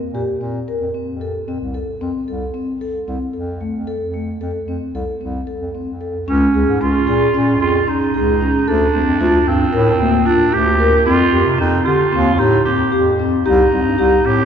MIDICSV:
0, 0, Header, 1, 4, 480
1, 0, Start_track
1, 0, Tempo, 532860
1, 1329, Time_signature, 9, 3, 24, 8
1, 13017, End_track
2, 0, Start_track
2, 0, Title_t, "Vibraphone"
2, 0, Program_c, 0, 11
2, 132, Note_on_c, 0, 67, 66
2, 281, Note_off_c, 0, 67, 0
2, 369, Note_on_c, 0, 60, 56
2, 519, Note_off_c, 0, 60, 0
2, 613, Note_on_c, 0, 70, 62
2, 762, Note_off_c, 0, 70, 0
2, 849, Note_on_c, 0, 60, 56
2, 1000, Note_off_c, 0, 60, 0
2, 1091, Note_on_c, 0, 69, 62
2, 1241, Note_off_c, 0, 69, 0
2, 1334, Note_on_c, 0, 60, 66
2, 1484, Note_off_c, 0, 60, 0
2, 1571, Note_on_c, 0, 69, 57
2, 1722, Note_off_c, 0, 69, 0
2, 1813, Note_on_c, 0, 60, 76
2, 1963, Note_off_c, 0, 60, 0
2, 2053, Note_on_c, 0, 69, 59
2, 2203, Note_off_c, 0, 69, 0
2, 2288, Note_on_c, 0, 60, 72
2, 2440, Note_off_c, 0, 60, 0
2, 2533, Note_on_c, 0, 69, 65
2, 2684, Note_off_c, 0, 69, 0
2, 2773, Note_on_c, 0, 60, 64
2, 2924, Note_off_c, 0, 60, 0
2, 3003, Note_on_c, 0, 69, 54
2, 3158, Note_off_c, 0, 69, 0
2, 3248, Note_on_c, 0, 57, 59
2, 3401, Note_off_c, 0, 57, 0
2, 3488, Note_on_c, 0, 69, 72
2, 3641, Note_off_c, 0, 69, 0
2, 3727, Note_on_c, 0, 57, 53
2, 3880, Note_off_c, 0, 57, 0
2, 3972, Note_on_c, 0, 69, 65
2, 4124, Note_off_c, 0, 69, 0
2, 4215, Note_on_c, 0, 60, 55
2, 4366, Note_off_c, 0, 60, 0
2, 4459, Note_on_c, 0, 69, 65
2, 4608, Note_off_c, 0, 69, 0
2, 4692, Note_on_c, 0, 60, 54
2, 4844, Note_off_c, 0, 60, 0
2, 4928, Note_on_c, 0, 69, 59
2, 5081, Note_off_c, 0, 69, 0
2, 5176, Note_on_c, 0, 60, 53
2, 5326, Note_off_c, 0, 60, 0
2, 5412, Note_on_c, 0, 69, 56
2, 5563, Note_off_c, 0, 69, 0
2, 5656, Note_on_c, 0, 61, 95
2, 5806, Note_off_c, 0, 61, 0
2, 5894, Note_on_c, 0, 68, 67
2, 6045, Note_off_c, 0, 68, 0
2, 6134, Note_on_c, 0, 61, 88
2, 6284, Note_off_c, 0, 61, 0
2, 6372, Note_on_c, 0, 68, 80
2, 6523, Note_off_c, 0, 68, 0
2, 6614, Note_on_c, 0, 61, 96
2, 6764, Note_off_c, 0, 61, 0
2, 6849, Note_on_c, 0, 68, 76
2, 7001, Note_off_c, 0, 68, 0
2, 7093, Note_on_c, 0, 61, 82
2, 7243, Note_off_c, 0, 61, 0
2, 7335, Note_on_c, 0, 68, 73
2, 7484, Note_off_c, 0, 68, 0
2, 7576, Note_on_c, 0, 61, 80
2, 7725, Note_off_c, 0, 61, 0
2, 7816, Note_on_c, 0, 69, 96
2, 7965, Note_off_c, 0, 69, 0
2, 8050, Note_on_c, 0, 60, 74
2, 8201, Note_off_c, 0, 60, 0
2, 8294, Note_on_c, 0, 65, 94
2, 8443, Note_off_c, 0, 65, 0
2, 8524, Note_on_c, 0, 60, 73
2, 8676, Note_off_c, 0, 60, 0
2, 8761, Note_on_c, 0, 70, 84
2, 8914, Note_off_c, 0, 70, 0
2, 9003, Note_on_c, 0, 58, 80
2, 9155, Note_off_c, 0, 58, 0
2, 9242, Note_on_c, 0, 65, 90
2, 9394, Note_off_c, 0, 65, 0
2, 9485, Note_on_c, 0, 62, 77
2, 9636, Note_off_c, 0, 62, 0
2, 9725, Note_on_c, 0, 70, 85
2, 9876, Note_off_c, 0, 70, 0
2, 9962, Note_on_c, 0, 60, 102
2, 10114, Note_off_c, 0, 60, 0
2, 10198, Note_on_c, 0, 67, 68
2, 10351, Note_off_c, 0, 67, 0
2, 10436, Note_on_c, 0, 60, 95
2, 10589, Note_off_c, 0, 60, 0
2, 10681, Note_on_c, 0, 67, 76
2, 10832, Note_off_c, 0, 67, 0
2, 10920, Note_on_c, 0, 60, 88
2, 11072, Note_off_c, 0, 60, 0
2, 11157, Note_on_c, 0, 67, 77
2, 11310, Note_off_c, 0, 67, 0
2, 11403, Note_on_c, 0, 60, 86
2, 11553, Note_off_c, 0, 60, 0
2, 11640, Note_on_c, 0, 67, 84
2, 11791, Note_off_c, 0, 67, 0
2, 11885, Note_on_c, 0, 60, 83
2, 12035, Note_off_c, 0, 60, 0
2, 12121, Note_on_c, 0, 67, 101
2, 12272, Note_off_c, 0, 67, 0
2, 12360, Note_on_c, 0, 60, 78
2, 12511, Note_off_c, 0, 60, 0
2, 12598, Note_on_c, 0, 67, 94
2, 12750, Note_off_c, 0, 67, 0
2, 12834, Note_on_c, 0, 60, 83
2, 12987, Note_off_c, 0, 60, 0
2, 13017, End_track
3, 0, Start_track
3, 0, Title_t, "Clarinet"
3, 0, Program_c, 1, 71
3, 5665, Note_on_c, 1, 61, 85
3, 6139, Note_on_c, 1, 65, 96
3, 6153, Note_off_c, 1, 61, 0
3, 6851, Note_off_c, 1, 65, 0
3, 6857, Note_on_c, 1, 65, 90
3, 7100, Note_on_c, 1, 63, 88
3, 7114, Note_off_c, 1, 65, 0
3, 7816, Note_on_c, 1, 62, 106
3, 7830, Note_off_c, 1, 63, 0
3, 8542, Note_on_c, 1, 60, 96
3, 8555, Note_off_c, 1, 62, 0
3, 9249, Note_on_c, 1, 62, 102
3, 9263, Note_off_c, 1, 60, 0
3, 9490, Note_on_c, 1, 67, 104
3, 9504, Note_off_c, 1, 62, 0
3, 9959, Note_off_c, 1, 67, 0
3, 9965, Note_on_c, 1, 65, 104
3, 10411, Note_off_c, 1, 65, 0
3, 10449, Note_on_c, 1, 63, 89
3, 10673, Note_on_c, 1, 65, 101
3, 10686, Note_off_c, 1, 63, 0
3, 11160, Note_on_c, 1, 63, 100
3, 11173, Note_off_c, 1, 65, 0
3, 11388, Note_off_c, 1, 63, 0
3, 11393, Note_on_c, 1, 67, 90
3, 11844, Note_off_c, 1, 67, 0
3, 12123, Note_on_c, 1, 63, 97
3, 12841, Note_on_c, 1, 67, 113
3, 12855, Note_off_c, 1, 63, 0
3, 13017, Note_off_c, 1, 67, 0
3, 13017, End_track
4, 0, Start_track
4, 0, Title_t, "Bass clarinet"
4, 0, Program_c, 2, 71
4, 120, Note_on_c, 2, 46, 76
4, 213, Note_off_c, 2, 46, 0
4, 365, Note_on_c, 2, 46, 66
4, 546, Note_off_c, 2, 46, 0
4, 728, Note_on_c, 2, 41, 64
4, 818, Note_off_c, 2, 41, 0
4, 963, Note_on_c, 2, 41, 64
4, 1236, Note_off_c, 2, 41, 0
4, 1325, Note_on_c, 2, 41, 71
4, 1417, Note_off_c, 2, 41, 0
4, 1445, Note_on_c, 2, 36, 60
4, 1627, Note_off_c, 2, 36, 0
4, 1812, Note_on_c, 2, 41, 75
4, 1902, Note_off_c, 2, 41, 0
4, 2055, Note_on_c, 2, 36, 72
4, 2234, Note_off_c, 2, 36, 0
4, 2772, Note_on_c, 2, 36, 74
4, 2862, Note_off_c, 2, 36, 0
4, 3016, Note_on_c, 2, 41, 72
4, 3286, Note_off_c, 2, 41, 0
4, 3377, Note_on_c, 2, 41, 60
4, 3556, Note_off_c, 2, 41, 0
4, 3623, Note_on_c, 2, 41, 62
4, 3891, Note_off_c, 2, 41, 0
4, 3980, Note_on_c, 2, 41, 74
4, 4068, Note_off_c, 2, 41, 0
4, 4215, Note_on_c, 2, 41, 63
4, 4305, Note_off_c, 2, 41, 0
4, 4454, Note_on_c, 2, 36, 74
4, 4545, Note_off_c, 2, 36, 0
4, 4699, Note_on_c, 2, 36, 71
4, 4878, Note_off_c, 2, 36, 0
4, 5054, Note_on_c, 2, 41, 60
4, 5144, Note_off_c, 2, 41, 0
4, 5295, Note_on_c, 2, 41, 67
4, 5565, Note_off_c, 2, 41, 0
4, 5661, Note_on_c, 2, 37, 97
4, 5839, Note_off_c, 2, 37, 0
4, 5899, Note_on_c, 2, 37, 83
4, 6019, Note_on_c, 2, 44, 80
4, 6033, Note_off_c, 2, 37, 0
4, 6107, Note_off_c, 2, 44, 0
4, 6134, Note_on_c, 2, 37, 83
4, 6314, Note_off_c, 2, 37, 0
4, 6371, Note_on_c, 2, 46, 79
4, 6552, Note_off_c, 2, 46, 0
4, 6608, Note_on_c, 2, 46, 88
4, 6850, Note_on_c, 2, 41, 86
4, 6864, Note_off_c, 2, 46, 0
4, 7031, Note_off_c, 2, 41, 0
4, 7333, Note_on_c, 2, 37, 86
4, 7692, Note_off_c, 2, 37, 0
4, 7815, Note_on_c, 2, 38, 98
4, 7993, Note_off_c, 2, 38, 0
4, 8059, Note_on_c, 2, 38, 79
4, 8174, Note_on_c, 2, 41, 78
4, 8187, Note_off_c, 2, 38, 0
4, 8262, Note_off_c, 2, 41, 0
4, 8287, Note_on_c, 2, 38, 93
4, 8468, Note_off_c, 2, 38, 0
4, 8528, Note_on_c, 2, 43, 87
4, 8708, Note_off_c, 2, 43, 0
4, 8762, Note_on_c, 2, 45, 101
4, 9005, Note_on_c, 2, 38, 88
4, 9019, Note_off_c, 2, 45, 0
4, 9186, Note_off_c, 2, 38, 0
4, 9491, Note_on_c, 2, 38, 88
4, 9849, Note_off_c, 2, 38, 0
4, 9965, Note_on_c, 2, 41, 100
4, 10145, Note_off_c, 2, 41, 0
4, 10203, Note_on_c, 2, 41, 89
4, 10326, Note_on_c, 2, 48, 85
4, 10340, Note_off_c, 2, 41, 0
4, 10416, Note_off_c, 2, 48, 0
4, 10453, Note_on_c, 2, 41, 104
4, 10630, Note_off_c, 2, 41, 0
4, 10688, Note_on_c, 2, 50, 93
4, 10866, Note_off_c, 2, 50, 0
4, 10929, Note_on_c, 2, 39, 103
4, 11170, Note_on_c, 2, 45, 98
4, 11184, Note_off_c, 2, 39, 0
4, 11348, Note_off_c, 2, 45, 0
4, 11651, Note_on_c, 2, 41, 82
4, 12008, Note_off_c, 2, 41, 0
4, 12128, Note_on_c, 2, 36, 107
4, 12306, Note_off_c, 2, 36, 0
4, 12367, Note_on_c, 2, 36, 87
4, 12479, Note_on_c, 2, 43, 78
4, 12493, Note_off_c, 2, 36, 0
4, 12570, Note_off_c, 2, 43, 0
4, 12598, Note_on_c, 2, 36, 95
4, 12780, Note_off_c, 2, 36, 0
4, 12840, Note_on_c, 2, 45, 92
4, 13017, Note_off_c, 2, 45, 0
4, 13017, End_track
0, 0, End_of_file